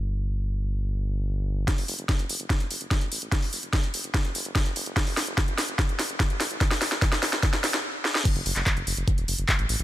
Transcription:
<<
  \new Staff \with { instrumentName = "Analog synth bass" } { \clef bass \time 4/4 \key e \dorian \tempo 4 = 146 g,,1 | r16 fis,,16 fis,,16 fis,,16 r16 fis,,16 fis,,16 fis,,16 r16 e,,16 fis,,16 fis,,16 r16 a,,16 a,,16 a,,16 | r16 fis,,16 fis,,16 fis,,16 r16 e,,16 fis,,16 fis,,16 r16 fis,,16 fis,,16 fis,,16 r16 fis,,16 fis,,16 fis,,16 | r16 fis,,16 fis,,16 fis,,16 r16 fis,,16 fis,,16 fis,,16 r16 e,,16 fis,,16 fis,,16 r16 a,,16 a,,16 a,,16 |
r16 fis,,16 fis,,16 fis,,16 r16 e,,16 fis,,16 fis,,16 r16 fis,,16 fis,,16 fis,,16 r4 | r16 fis,,16 fis,,16 fis,,16 r16 fis,,16 fis,,16 fis,,16 r16 e,,16 fis,,16 fis,,16 r16 a,,16 a,,16 a,,16 | }
  \new DrumStaff \with { instrumentName = "Drums" } \drummode { \time 4/4 r4 r4 r4 r4 | <hh bd sn>16 hho16 hho16 hh16 <hh bd sn>16 hh16 hho16 hh16 <hh bd sn>16 hh16 hho16 hh16 <hh bd sn>16 hh16 hho16 hh16 | <hh bd sn>16 hho16 hho16 hh16 <hh bd sn>16 hh16 hho16 hh16 <hh bd sn>16 hh16 hho16 hh16 <hh bd sn>16 hh16 hho16 hh16 | <hh bd sn>16 hho16 <hho sn>16 hh16 <hh bd sn>16 hh16 <hho sn>16 hh16 <hh bd sn>16 hh16 <hho sn>16 hh16 <hh bd sn>16 hh16 <hho sn>16 hh16 |
<hh bd sn>16 <hho sn>16 <hho sn>16 <hh sn>16 <hh bd sn>16 <hh sn>16 <hho sn>16 <hh sn>16 <hh bd sn>16 <hh sn>16 <hho sn>16 <hh sn>16 r8 sn16 sn16 | <cymc hh bd>16 hh16 hho16 <hc hh>16 <hc hh bd>16 hh16 hho16 hh16 <hh bd>16 hh16 hho16 hh16 <hc hh bd>16 hh16 hho16 hh16 | }
>>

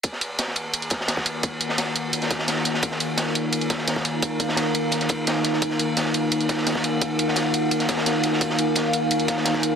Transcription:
<<
  \new Staff \with { instrumentName = "Ambient pad" } { \time 4/4 \key ees \minor \tempo 4 = 172 << { ges''1~ | ges''1 | bes''1~ | bes''1 |
ges''1~ | ges''1 | aes''1 | } \\ { <ees' bes' f''>1~ | <ees' bes' f''>1~ | <ees' bes' f''>1~ | <ees' bes' f''>1~ |
<ees' bes' f''>1~ | <ees' bes' f''>1~ | <ees' bes' f''>1 | } >> }
  \new DrumStaff \with { instrumentName = "Drums" } \drummode { \time 4/4 <hh bd cymr>16 sn16 <hh cymr>8 <hh cymr sn>16 sn16 <hh cymr>8 <hh cymr>16 hh16 <hh bd cymr sn>16 sn16 <hh cymr sn>16 <bd sn>16 <hh cymr>8 | <hh bd cymr>8 <hh cymr>16 sn16 <hh cymr sn>8 <hh cymr>8 <hh cymr>16 <hh sn>16 <hh bd cymr sn>16 sn16 <hh cymr sn>16 sn16 <hh cymr sn>16 sn16 | <hh bd cymr>16 sn16 <hh cymr>8 <hh cymr sn>16 sn16 <hh cymr>8 <hh cymr>16 hh16 <hh bd cymr sn>16 sn16 <hh cymr sn>16 <bd sn>16 <hh cymr>8 | <hh bd cymr>8 <hh bd cymr>16 sn16 <hh cymr sn>8 <hh cymr>8 <hh cymr sn>16 <hh sn>16 <hh bd cymr>8 <hh cymr sn>16 sn16 <hh cymr sn>16 sn16 |
<hh bd cymr>16 sn16 <hh cymr>8 <hh cymr sn>16 sn16 <hh cymr>8 <hh cymr>16 hh16 <hh bd cymr sn>16 sn16 <hh cymr sn>16 <bd sn>16 <hh cymr>8 | <hh bd cymr>8 <hh cymr>16 sn16 <hh cymr sn>8 <hh cymr>8 <hh cymr>16 <hh sn>16 <hh bd cymr sn>16 sn16 <hh cymr sn>16 sn16 <hh cymr sn>16 sn16 | <hh bd cymr>16 sn16 <hh cymr>8 <hh cymr sn>16 sn16 <hh cymr>8 <hh cymr>16 hh16 <hh bd cymr sn>16 sn16 <hh cymr sn>16 <bd sn>16 <hh cymr>8 | }
>>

